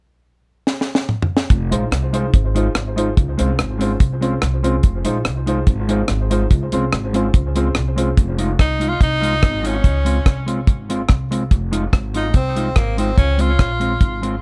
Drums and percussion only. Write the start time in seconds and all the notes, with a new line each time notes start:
0.67 snare
0.81 snare
0.95 snare
1.09 mid tom
1.22 floor tom
1.37 snare
1.50 kick, closed hi-hat
1.72 closed hi-hat
1.92 cross-stick, closed hi-hat
2.14 closed hi-hat
2.34 kick, closed hi-hat
2.56 closed hi-hat
2.75 cross-stick, closed hi-hat
2.98 closed hi-hat
3.17 kick, closed hi-hat
3.39 closed hi-hat
3.59 cross-stick, closed hi-hat
3.81 closed hi-hat
4.00 kick, closed hi-hat
4.22 closed hi-hat
4.42 cross-stick, closed hi-hat
4.64 closed hi-hat
4.83 kick, closed hi-hat
5.05 closed hi-hat
5.25 cross-stick, closed hi-hat
5.47 closed hi-hat
5.67 kick, closed hi-hat
5.89 closed hi-hat
6.08 cross-stick, closed hi-hat
6.31 closed hi-hat
6.51 kick, closed hi-hat
6.72 closed hi-hat
6.93 cross-stick, closed hi-hat
7.14 closed hi-hat
7.34 kick, closed hi-hat
7.56 closed hi-hat
7.75 cross-stick, closed hi-hat
7.98 closed hi-hat
8.17 kick, closed hi-hat
8.39 closed hi-hat
8.59 kick, cross-stick, closed hi-hat
8.81 closed hi-hat
9.01 kick, closed hi-hat
9.23 closed hi-hat
9.43 kick, cross-stick, closed hi-hat
9.65 closed hi-hat
9.84 kick, closed hi-hat
10.06 closed hi-hat
10.26 kick, cross-stick, closed hi-hat
10.48 closed hi-hat
10.67 kick, closed hi-hat
10.90 closed hi-hat
11.09 kick, cross-stick, closed hi-hat
11.32 closed hi-hat
11.51 kick, closed hi-hat
11.73 closed hi-hat
11.93 kick, cross-stick, closed hi-hat
12.14 closed hi-hat
12.34 kick, closed hi-hat
12.56 closed hi-hat
12.76 kick, cross-stick, closed hi-hat
12.98 closed hi-hat
13.18 kick, closed hi-hat
13.39 closed hi-hat
13.59 kick, cross-stick, closed hi-hat
13.81 closed hi-hat
14.01 kick, closed hi-hat
14.23 closed hi-hat